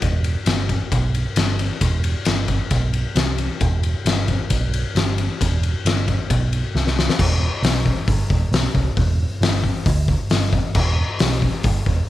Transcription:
0.02 picked electric bass E1, kick, ride
0.24 ride
0.46 picked electric bass G1, snare, ride
0.69 kick, ride
0.92 picked electric bass B1, kick, ride
1.14 ride
1.36 picked electric bass G1, snare, ride
1.59 ride
1.81 picked electric bass E1, kick, ride
2.04 ride
2.25 picked electric bass G1, snare, ride
2.48 kick, ride
2.71 picked electric bass B1, kick, ride
2.93 ride
3.15 picked electric bass C2, snare, ride
3.38 ride
3.60 picked electric bass E1, kick, ride
3.83 ride
4.05 picked electric bass G1, snare, ride
4.28 kick, ride
4.50 picked electric bass B1, kick, ride
4.74 ride
4.95 picked electric bass G1, snare, ride
5.18 ride
5.40 picked electric bass E1, kick, ride
5.63 ride
5.85 picked electric bass G1, snare, ride
6.08 kick, ride
6.30 picked electric bass B1, kick, ride
6.53 ride
6.75 picked electric bass C2, snare
6.87 snare
6.99 snare
7.09 snare
7.19 picked electric bass E1, kick, crash
7.62 picked electric bass B1, snare, open hi-hat
7.86 kick
8.08 picked electric bass G1, kick, open hi-hat
8.30 picked electric bass E1, kick
8.51 picked electric bass B1, snare, open hi-hat
8.74 picked electric bass C2, kick
8.97 picked electric bass E1, kick, open hi-hat
9.41 picked electric bass G1, snare, open hi-hat
9.64 kick
9.86 picked electric bass D2, kick, open hi-hat
10.08 kick
10.30 picked electric bass G1, snare, open hi-hat
10.53 kick
10.75 picked electric bass E1, kick, crash
11.19 picked electric bass B1, snare, open hi-hat
11.42 kick
11.63 picked electric bass G1, kick, open hi-hat
11.86 picked electric bass E1, kick

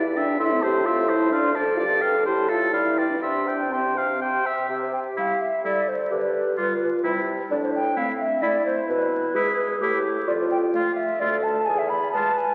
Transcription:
Already playing: bassoon E2, clarinet G4, oboe D5, flute E5
0.16 french horn D4, clarinet B4, oboe E5, flute G5
0.39 bassoon A2, french horn E4, clarinet A4, oboe E5, flute C6
0.51 french horn C4
0.61 french horn G4, oboe C5, clarinet C5, flute A5
0.84 french horn F4, clarinet A4, oboe E5, flute C6
1.08 french horn E4, clarinet C5, oboe C5, flute A5
1.31 bassoon D2, french horn D4, clarinet D5, oboe F5, flute C6
1.55 french horn A4, clarinet C5, oboe D5, flute A5
1.77 bassoon G2, french horn F4, clarinet G4, oboe D5, flute F5
1.91 french horn D4
2.01 french horn A4, clarinet B4, oboe F5, flute G5
2.25 bassoon A2, clarinet E4, french horn G4, oboe C5, flute A5
2.49 french horn F4, oboe A4, clarinet A4, flute E5
2.73 bassoon G2, french horn E4, clarinet D5, oboe F5, flute B5
2.98 clarinet B4, oboe D5, flute G5
3.10 french horn D4
3.21 bassoon C3, french horn D4, clarinet G4, oboe E5, flute C6
3.46 clarinet C5, flute G5, oboe G5
3.71 french horn C4, clarinet G4, oboe G5, flute C6
3.96 clarinet C5, oboe F5, flute G5
4.21 clarinet G4, oboe G5, flute C6
4.45 clarinet C5, oboe E5, flute G5
4.69 bassoon C3, clarinet G4, flute E5
4.82 flute C5
4.93 flute G5
5.17 french horn G3, oboe E4, flute F5
5.41 flute E5
5.64 french horn G3, oboe E4, clarinet A4, flute D5
5.88 flute C5
6.11 bassoon D3, clarinet G4, flute B4
6.57 french horn G3, oboe F4, clarinet F4
7.03 bassoon C3, french horn G3, oboe E4, clarinet E4
7.51 bassoon A2, clarinet D4, flute D5
7.64 flute C5
7.75 flute G5
7.96 french horn A3, clarinet C4, oboe E4, flute F5
8.20 flute E5
8.42 french horn A3, clarinet E4, oboe E4, flute D5
8.66 flute C5
8.89 bassoon B2, flute B4
9.34 french horn G#3, oboe E4, clarinet G#4
9.80 bassoon A2, french horn A3, oboe E4, clarinet G4
10.27 bassoon F2, clarinet F4, flute D5
10.41 flute C5
10.51 flute G5
10.74 french horn A3, oboe F4, flute F5
10.96 flute E5
11.20 bassoon D2, french horn A3, oboe F4, clarinet A4, flute D5
11.43 flute A5
11.65 bassoon E2, clarinet G#4, flute G#5
11.78 flute E5
11.89 flute B5
12.12 french horn G#3, oboe F4, clarinet B4, flute A5
12.37 flute G#5

